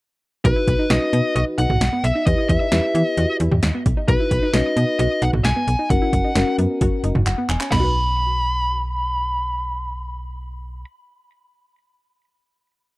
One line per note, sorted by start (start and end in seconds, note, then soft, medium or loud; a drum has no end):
0.45 0.53 B1 loud
0.45 0.84 D#4 medium
0.45 0.84 F#4 medium
0.45 0.84 B4 medium
0.45 0.92 B4 medium
0.45 kick loud
0.45 closed hi-hat medium
0.56 0.68 E4 medium
0.68 0.76 B1 loud
0.68 kick medium
0.68 closed hi-hat medium
0.79 0.85 D#4 medium
0.90 0.99 B1 loud
0.90 1.03 C#4 medium
0.90 1.70 D#4 medium
0.90 1.70 F#4 medium
0.90 1.70 B4 medium
0.90 1.33 D#5 medium
0.90 snare loud
0.90 closed hi-hat medium
1.13 1.21 B2 loud
1.13 1.25 B3 medium
1.13 closed hi-hat medium
1.36 1.44 B1 loud
1.36 1.48 F#4 medium
1.36 1.42 D#5 loud
1.36 closed hi-hat medium
1.58 1.67 B1 loud
1.58 1.65 D#4 medium
1.58 2.05 F#5 loud
1.58 closed hi-hat medium
1.70 1.78 B1 medium
1.70 1.82 F#4 medium
1.70 mid tom medium
1.81 1.89 B1 medium
1.81 snare loud
1.81 closed hi-hat medium
1.93 2.05 B3 medium
2.04 2.12 B1 loud
2.04 2.26 E5 medium
2.04 closed hi-hat medium
2.15 2.21 D#4 medium
2.26 2.35 E2 loud
2.26 2.66 E4 medium
2.26 2.66 G4 medium
2.26 2.66 B4 medium
2.26 2.49 D#5 loud
2.26 kick loud
2.26 closed hi-hat medium
2.38 2.50 E4 medium
2.49 2.58 E2 loud
2.49 3.08 E5 medium
2.49 kick medium
2.49 closed hi-hat medium
2.61 2.67 D#4 medium
2.72 2.80 E2 loud
2.72 2.84 C#4 medium
2.72 3.51 E4 medium
2.72 3.51 G4 medium
2.72 3.51 B4 medium
2.72 snare loud
2.72 closed hi-hat medium
2.95 3.03 E3 loud
2.95 3.07 B3 medium
2.95 closed hi-hat medium
3.08 3.36 D#5 medium
3.17 3.26 E2 loud
3.17 3.30 F#4 medium
3.17 closed hi-hat medium
3.40 3.49 E2 loud
3.40 3.46 E4 medium
3.40 closed hi-hat medium
3.52 3.60 E2 loud
3.52 3.64 G4 medium
3.52 mid tom medium
3.63 3.71 D#2 medium
3.63 snare loud
3.63 closed hi-hat medium
3.74 3.87 B3 medium
3.86 3.94 B1 medium
3.86 kick loud
3.86 closed hi-hat medium
3.97 4.03 D#4 medium
4.08 4.17 B1 loud
4.08 4.48 D#4 medium
4.08 4.48 F#4 medium
4.08 4.48 B4 medium
4.08 4.51 B4 medium
4.08 kick loud
4.08 closed hi-hat medium
4.20 4.32 E4 medium
4.31 4.40 B1 medium
4.31 kick medium
4.31 closed hi-hat medium
4.43 4.49 D#4 medium
4.54 4.62 B1 loud
4.54 4.66 C#4 medium
4.54 5.33 D#4 medium
4.54 5.33 F#4 medium
4.54 5.33 B4 medium
4.54 4.98 D#5 medium
4.54 snare loud
4.54 closed hi-hat medium
4.76 4.85 B2 loud
4.76 4.89 B3 medium
4.76 closed hi-hat medium
4.99 5.08 B1 loud
4.99 5.12 F#4 medium
4.99 5.23 D#5 medium
4.99 closed hi-hat medium
5.22 5.30 B1 loud
5.22 5.28 D#4 medium
5.22 5.28 F#5 medium
5.22 closed hi-hat medium
5.33 5.42 B1 medium
5.33 5.46 F#4 medium
5.33 mid tom medium
5.45 5.53 B1 loud
5.45 5.90 G#5 loud
5.45 snare loud
5.45 closed hi-hat medium
5.56 5.68 B3 medium
5.67 5.76 B1 loud
5.67 closed hi-hat medium
5.79 5.85 D#4 medium
5.90 5.99 F#1 loud
5.90 6.30 C#4 medium
5.90 6.30 F#4 medium
5.90 6.30 A#4 medium
5.90 6.54 F#5 medium
5.90 kick loud
5.90 closed hi-hat medium
6.02 6.14 E4 medium
6.13 6.21 F#1 loud
6.13 kick medium
6.13 closed hi-hat medium
6.24 6.31 D#4 medium
6.35 6.44 F#1 loud
6.35 7.15 C#4 medium
6.35 6.48 C#4 medium
6.35 7.15 F#4 medium
6.35 7.15 A#4 medium
6.35 snare loud
6.35 closed hi-hat medium
6.58 6.67 F#2 loud
6.58 6.71 B3 medium
6.58 closed hi-hat medium
6.81 6.90 F#1 loud
6.81 6.93 F#4 medium
6.81 kick medium
6.81 closed hi-hat medium
7.04 7.12 F#1 loud
7.04 7.10 D#4 medium
7.04 closed hi-hat medium
7.15 7.24 F#1 loud
7.15 7.28 F#4 medium
7.15 mid tom medium
7.26 7.35 F#1 medium
7.26 7.48 F#5 medium
7.26 clap medium
7.26 closed hi-hat medium
7.38 7.50 B3 medium
7.49 7.58 E1 medium
7.49 7.70 G#5 medium
7.49 clap medium
7.49 closed hi-hat medium
7.61 7.67 C#4 medium
7.61 clap medium
7.72 10.85 B1 loud
7.72 10.85 B3 medium
7.72 10.85 B5 medium
7.72 snare medium
7.72 floor tom medium
7.72 crash medium
7.76 10.89 D#4 medium
7.76 10.93 F#4 medium
7.84 10.97 B4 medium